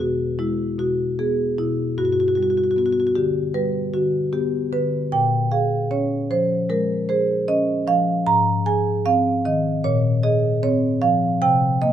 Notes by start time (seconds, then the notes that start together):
Already playing: E2 B3
0.00 B2 F#4
0.39 G#3 E4
0.79 B2 F#4
1.19 B3 G#4
1.58 B2 E4
1.98 G2 F#4
2.05 F#4
2.13 F#4
2.20 F#4
2.28 F#4
2.35 G3 F#4
2.43 F#4
2.50 F#4
2.57 F#4
2.64 F#4
2.71 F#4
2.76 B3 F#4
2.86 F#4
2.92 F#4
3.00 F#4
3.07 F#4
3.15 D3 G4
3.54 G3 B4
3.93 D3 F#4
4.33 B3 G4
4.73 D3 B4
5.12 A#2 G5
5.52 G#4 F5
5.91 C#4 C#5
6.31 F3 C5
6.69 G#3 A#4
7.09 G#4 C5
7.48 C#4 D#5
7.87 F3 F5
8.27 G#2 A#5
8.66 G#4 G#5
9.05 C4 F5
9.45 D#3 D#5
9.84 A#2 C#5
10.23 G#4 D#5
10.63 C4 C#5
11.02 F3 F5
11.42 C3 G5
11.82 A#3 D#5